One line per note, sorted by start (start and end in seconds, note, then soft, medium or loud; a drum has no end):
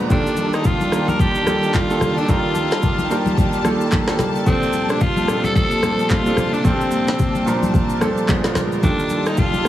0.00 0.12 A#2 medium
0.00 0.12 F3 medium
0.00 0.12 B3 medium
0.00 0.10 D4 medium
0.00 4.43 D4 medium
0.00 0.12 B4 loud
0.09 0.77 D#3 medium
0.09 4.43 D#3 medium
0.09 4.43 G3 medium
0.09 0.77 A#3 medium
0.09 0.77 D4 medium
0.09 0.51 D4 medium
0.09 0.78 F4 medium
0.09 2.26 F4 medium
0.09 0.78 G4 medium
0.09 0.78 A4 medium
0.09 8.25 A5 medium
0.09 kick loud
0.09 low conga medium
0.09 shaker medium
0.27 shaker medium
0.37 high conga soft
0.37 shaker loud
0.53 0.68 D#4 medium
0.53 cross-stick medium
0.53 shaker soft
0.64 1.11 F4 loud
0.64 kick loud
0.64 low conga medium
0.64 shaker medium
0.81 high conga medium
0.81 shaker soft
0.91 1.37 D#3 medium
0.91 1.37 A#3 medium
0.91 1.37 D4 medium
0.91 1.38 F4 medium
0.91 1.38 G4 medium
0.91 1.38 A#4 medium
0.91 cross-stick medium
0.91 shaker loud
1.08 1.22 A#4 loud
1.08 high conga medium
1.08 shaker medium
1.19 1.74 G4 loud
1.19 kick loud
1.19 shaker medium
1.35 shaker medium
1.46 1.80 D#3 medium
1.46 1.80 A#3 medium
1.46 1.80 D4 medium
1.46 1.80 F4 medium
1.46 1.81 G4 medium
1.46 1.81 A4 medium
1.46 cross-stick loud
1.46 high conga medium
1.46 shaker medium
1.63 shaker soft
1.74 2.19 F4 medium
1.74 kick medium
1.74 clap medium
1.74 high conga medium
1.74 shaker medium
1.89 2.21 D#3 medium
1.89 2.21 A#3 medium
1.89 2.22 D4 medium
1.89 2.22 F4 medium
1.89 2.22 G4 medium
1.89 2.22 A4 medium
1.89 shaker medium
2.01 cross-stick medium
2.01 high conga medium
2.01 low conga medium
2.01 shaker medium
2.18 2.31 D4 medium
2.18 shaker soft
2.28 2.95 D#3 medium
2.28 2.96 A#3 medium
2.28 2.96 D4 medium
2.28 2.96 F4 medium
2.28 3.38 F4 loud
2.28 4.45 G4 medium
2.28 2.96 G4 medium
2.28 2.96 A#4 medium
2.28 kick loud
2.28 low conga medium
2.28 shaker medium
2.55 high conga soft
2.55 shaker loud
2.71 cross-stick medium
2.71 snare medium
2.71 shaker soft
2.83 kick loud
2.83 low conga medium
2.83 shaker medium
2.98 high conga medium
2.98 shaker soft
3.10 3.55 D#3 medium
3.10 3.55 A#3 medium
3.10 3.56 D4 medium
3.10 3.56 F4 medium
3.10 3.56 G4 medium
3.10 3.56 A#4 loud
3.10 shaker loud
3.26 high conga medium
3.26 shaker medium
3.38 kick loud
3.38 shaker medium
3.53 shaker medium
3.64 3.98 D#3 medium
3.64 3.98 A#3 medium
3.64 3.98 D4 medium
3.64 3.99 F4 medium
3.64 3.99 G4 medium
3.64 3.99 A4 medium
3.64 cross-stick medium
3.64 high conga medium
3.64 shaker medium
3.81 shaker soft
3.92 kick medium
3.92 clap medium
3.92 high conga medium
3.92 shaker medium
4.08 4.40 D#3 medium
4.08 4.40 A#3 medium
4.08 4.40 D4 medium
4.08 4.40 F4 medium
4.08 4.40 G4 medium
4.08 4.41 A4 loud
4.08 cross-stick loud
4.08 snare medium
4.08 shaker medium
4.19 cross-stick medium
4.19 snare medium
4.19 high conga medium
4.19 low conga medium
4.19 shaker medium
4.35 shaker soft
4.46 5.14 A#2 medium
4.46 8.25 C3 medium
4.46 5.14 F3 medium
4.46 8.25 A#3 medium
4.46 5.14 C4 medium
4.46 4.92 C4 loud
4.46 9.68 D4 medium
4.46 5.14 D4 medium
4.46 5.15 A4 medium
4.46 kick loud
4.46 low conga medium
4.46 shaker medium
4.63 shaker medium
4.73 high conga soft
4.73 shaker loud
4.89 5.03 D4 medium
4.89 cross-stick medium
4.89 shaker medium
5.01 5.46 F4 loud
5.01 kick loud
5.01 low conga medium
5.01 shaker medium
5.16 high conga medium
5.16 shaker soft
5.28 5.74 A#2 medium
5.28 5.74 F3 medium
5.28 5.74 C4 medium
5.28 5.74 D4 medium
5.28 5.74 A4 medium
5.28 cross-stick medium
5.28 shaker loud
5.44 5.55 A4 loud
5.44 high conga medium
5.44 shaker medium
5.55 6.12 A4 loud
5.55 kick loud
5.55 shaker medium
5.71 shaker medium
5.82 6.16 A#2 medium
5.82 6.16 F3 medium
5.82 6.17 C4 medium
5.82 6.17 D4 medium
5.82 6.17 A4 medium
5.82 cross-stick loud
5.82 high conga medium
5.82 shaker medium
5.99 shaker soft
6.10 6.55 F4 loud
6.10 kick medium
6.10 clap medium
6.10 high conga medium
6.10 shaker medium
6.25 6.58 A#2 medium
6.25 6.58 F3 medium
6.25 6.58 C4 medium
6.25 6.58 D4 medium
6.25 6.59 A4 medium
6.25 shaker medium
6.37 cross-stick medium
6.37 high conga medium
6.37 low conga medium
6.37 shaker medium
6.53 6.66 D4 medium
6.53 shaker soft
6.64 7.32 A#2 medium
6.64 7.32 F3 medium
6.64 7.74 C4 medium
6.64 7.32 C4 medium
6.64 7.33 D4 medium
6.64 6.73 F4 medium
6.64 kick loud
6.64 low conga medium
6.64 shaker medium
6.73 7.36 G4 medium
6.81 shaker medium
6.91 high conga soft
6.91 shaker loud
7.08 snare medium
7.08 shaker medium
7.19 kick loud
7.19 low conga medium
7.19 shaker medium
7.35 high conga medium
7.35 shaker soft
7.46 7.92 A#2 medium
7.46 7.92 F3 medium
7.46 7.92 C4 medium
7.46 7.92 D4 medium
7.46 7.93 A#4 loud
7.46 shaker loud
7.63 high conga medium
7.63 shaker medium
7.74 kick loud
7.74 shaker medium
7.90 shaker medium
8.01 8.26 A#2 medium
8.01 8.27 F3 medium
8.01 8.29 C4 medium
8.01 8.28 D4 medium
8.01 8.29 A4 loud
8.01 cross-stick loud
8.01 high conga medium
8.01 shaker medium
8.18 shaker medium
8.28 8.41 A#2 medium
8.28 8.41 F3 medium
8.28 8.82 G#3 medium
8.28 8.82 B3 medium
8.28 8.41 B3 medium
8.28 8.41 D4 medium
8.28 8.42 G#4 loud
8.28 8.83 A#4 medium
8.28 kick medium
8.28 clap medium
8.28 high conga medium
8.28 shaker medium
8.44 8.76 A#2 medium
8.44 8.76 F3 medium
8.44 8.76 B3 medium
8.44 8.77 D4 medium
8.44 8.77 F4 loud
8.44 cross-stick medium
8.44 snare medium
8.44 shaker medium
8.55 cross-stick medium
8.55 snare medium
8.55 high conga medium
8.55 low conga medium
8.55 shaker medium
8.72 shaker soft
8.82 9.50 D#3 medium
8.82 9.68 D#3 medium
8.82 9.68 G3 medium
8.82 9.50 A#3 medium
8.82 9.50 D4 medium
8.82 9.29 D4 medium
8.82 9.68 F4 medium
8.82 9.51 F4 medium
8.82 9.51 G4 medium
8.82 9.51 A4 medium
8.82 9.68 A5 medium
8.82 kick loud
8.82 low conga medium
8.82 shaker medium
8.99 shaker medium
9.10 high conga soft
9.10 shaker loud
9.26 9.40 D#4 medium
9.26 cross-stick medium
9.26 shaker soft
9.37 9.68 F4 loud
9.37 kick loud
9.37 low conga medium
9.37 shaker medium
9.53 high conga medium
9.53 shaker medium
9.64 9.68 D#3 medium
9.64 9.68 A#3 medium
9.64 9.68 D4 medium
9.64 cross-stick medium